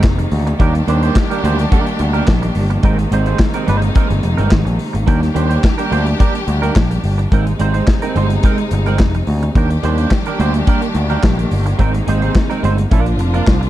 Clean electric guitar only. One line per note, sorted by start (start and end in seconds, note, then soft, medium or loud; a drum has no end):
0.03 muted clean electric guitar stroke soft
0.18 muted clean electric guitar stroke soft
0.47 muted clean electric guitar stroke soft
0.59 0.78 A#3 medium
0.59 0.75 D4 medium
0.59 0.74 G4 medium
0.59 0.73 A#4 medium
0.75 muted clean electric guitar stroke soft
0.88 1.03 A#3 medium
0.88 1.03 D4 medium
0.88 1.02 G4 medium
0.88 1.01 C5 medium
1.03 1.15 A#3 soft
1.03 1.16 D4 soft
1.03 1.16 G4 medium
1.03 1.16 C5 medium
1.16 muted clean electric guitar stroke soft
1.30 1.42 A#3 soft
1.30 1.43 D4 medium
1.30 1.44 G4 soft
1.30 1.44 A#4 medium
1.44 1.62 A#3 medium
1.44 1.59 D4 medium
1.44 1.58 G4 medium
1.44 1.58 C5 medium
1.58 muted clean electric guitar stroke soft
1.71 1.92 A#3 medium
1.71 1.86 D4 medium
1.71 1.86 G4 medium
1.71 1.85 A#4 medium
1.86 muted clean electric guitar stroke medium
1.99 muted clean electric guitar stroke soft
2.13 2.26 A#3 soft
2.13 2.27 D4 medium
2.13 2.27 G4 medium
2.13 2.27 A#4 medium
2.27 muted clean electric guitar stroke soft
2.42 muted clean electric guitar stroke soft
2.70 muted clean electric guitar stroke soft
2.83 3.02 G#3 medium
2.83 2.99 C4 medium
2.83 2.98 D#4 medium
2.83 2.97 A#4 medium
2.98 muted clean electric guitar stroke soft
3.12 3.27 G#3 medium
3.12 3.27 C4 medium
3.12 3.26 D#4 medium
3.12 3.26 C5 medium
3.27 3.38 G#3 medium
3.27 3.39 C4 medium
3.27 3.40 D#4 medium
3.27 3.40 C5 medium
3.54 3.66 G#3 soft
3.54 3.66 C4 medium
3.54 3.67 D#4 medium
3.54 3.68 A#4 medium
3.67 3.88 G#3 medium
3.67 3.82 C4 medium
3.67 3.81 D#4 medium
3.67 3.82 C5 medium
3.82 muted clean electric guitar stroke soft
3.95 4.14 G#3 medium
3.95 4.10 C4 medium
3.95 4.09 D#4 medium
3.95 4.08 A#4 medium
4.09 muted clean electric guitar stroke soft
4.23 muted clean electric guitar stroke soft
4.37 4.50 G#3 medium
4.37 4.50 C4 medium
4.37 4.51 D#4 medium
4.37 4.51 A#4 medium
4.65 muted clean electric guitar stroke soft
4.93 muted clean electric guitar stroke soft
5.07 5.26 A#3 medium
5.07 5.21 D4 medium
5.07 5.21 G4 medium
5.07 5.20 A#4 medium
5.21 muted clean electric guitar stroke soft
5.34 5.50 A#3 medium
5.34 5.49 D4 medium
5.34 5.49 G4 medium
5.34 5.48 C5 medium
5.49 5.62 A#3 soft
5.49 5.62 D4 medium
5.49 5.63 G4 medium
5.49 5.63 C5 medium
5.63 muted clean electric guitar stroke soft
5.78 5.90 A#3 soft
5.78 5.91 D4 soft
5.78 5.91 G4 medium
5.78 5.92 A#4 medium
5.91 6.10 A#3 medium
5.91 6.07 D4 medium
5.91 6.06 G4 medium
5.91 6.06 C5 medium
6.06 muted clean electric guitar stroke soft
6.19 6.38 A#3 medium
6.19 6.35 D4 medium
6.19 6.34 G4 medium
6.19 6.33 A#4 medium
6.35 muted clean electric guitar stroke medium
6.48 muted clean electric guitar stroke soft
6.62 6.74 A#3 medium
6.62 6.75 D4 medium
6.62 6.75 G4 medium
6.62 6.76 A#4 medium
6.75 muted clean electric guitar stroke soft
6.91 muted clean electric guitar stroke soft
7.18 muted clean electric guitar stroke soft
7.32 7.51 G#3 medium
7.32 7.47 C4 medium
7.32 7.46 D#4 medium
7.32 7.45 A#4 medium
7.47 muted clean electric guitar stroke soft
7.59 7.75 G#3 medium
7.59 7.74 C4 medium
7.59 7.74 D#4 medium
7.59 7.73 C5 medium
7.74 7.86 G#3 medium
7.74 7.87 C4 soft
7.74 7.87 D#4 medium
7.74 7.88 C5 medium
7.88 muted clean electric guitar stroke soft
8.02 8.14 G#3 soft
8.02 8.15 C4 medium
8.02 8.16 D#4 medium
8.02 8.16 A#4 medium
8.15 8.34 G#3 medium
8.15 8.30 C4 loud
8.15 8.30 D#4 medium
8.15 8.30 C5 medium
8.30 muted clean electric guitar stroke soft
8.44 8.62 G#3 medium
8.44 8.59 C4 medium
8.44 8.59 D#4 loud
8.44 8.58 A#4 medium
8.59 muted clean electric guitar stroke medium
8.73 muted clean electric guitar stroke soft
8.86 8.99 G#3 medium
8.86 9.00 C4 medium
8.86 9.00 D#4 medium
8.86 9.00 A#4 medium
9.01 muted clean electric guitar stroke soft
9.15 muted clean electric guitar stroke soft
9.43 muted clean electric guitar stroke soft
9.56 9.75 A#3 medium
9.56 9.71 D4 medium
9.56 9.70 G4 medium
9.56 9.69 A#4 medium
9.71 muted clean electric guitar stroke soft
9.83 9.98 A#3 medium
9.83 9.98 D4 medium
9.83 9.98 G4 medium
9.83 9.97 C5 medium
9.98 10.10 A#3 medium
9.98 10.11 D4 medium
9.98 10.11 G4 medium
9.98 10.12 C5 medium
10.11 muted clean electric guitar stroke soft
10.27 10.38 A#3 medium
10.27 10.39 D4 medium
10.27 10.39 G4 medium
10.27 10.40 A#4 medium
10.39 10.58 A#3 medium
10.39 10.54 D4 medium
10.39 10.54 G4 medium
10.39 10.54 C5 medium
10.55 muted clean electric guitar stroke soft
10.67 10.86 A#3 medium
10.67 10.82 D4 medium
10.67 10.81 G4 medium
10.67 10.81 A#4 medium
10.82 muted clean electric guitar stroke soft
10.96 muted clean electric guitar stroke soft
11.10 11.22 A#3 soft
11.10 11.22 D4 medium
11.10 11.23 G4 medium
11.10 11.23 A#4 medium
11.23 muted clean electric guitar stroke soft
11.38 muted clean electric guitar stroke soft
11.66 muted clean electric guitar stroke soft
11.79 11.98 G#3 medium
11.79 11.95 C4 medium
11.79 11.94 D#4 medium
11.79 11.93 A#4 medium
11.94 muted clean electric guitar stroke soft
12.07 12.22 G#3 medium
12.07 12.22 C4 medium
12.07 12.22 D#4 medium
12.07 12.21 C5 medium
12.22 12.34 G#3 soft
12.22 12.34 C4 medium
12.22 12.35 D#4 medium
12.22 12.36 C5 medium
12.35 muted clean electric guitar stroke soft
12.50 12.62 G#3 soft
12.50 12.63 C4 medium
12.50 12.63 D#4 medium
12.50 12.63 A#4 medium
12.63 12.82 G#3 medium
12.63 12.78 C4 medium
12.63 12.77 D#4 medium
12.63 12.78 C5 medium
12.78 muted clean electric guitar stroke soft
12.91 13.11 A#3 medium
12.91 13.07 D4 medium
12.91 13.06 F4 medium
12.91 13.05 A#4 medium
13.06 muted clean electric guitar stroke medium
13.19 muted clean electric guitar stroke soft
13.34 13.46 A#3 medium
13.34 13.47 D4 medium
13.34 13.47 F4 medium
13.34 13.47 A#4 medium
13.47 muted clean electric guitar stroke soft
13.61 muted clean electric guitar stroke soft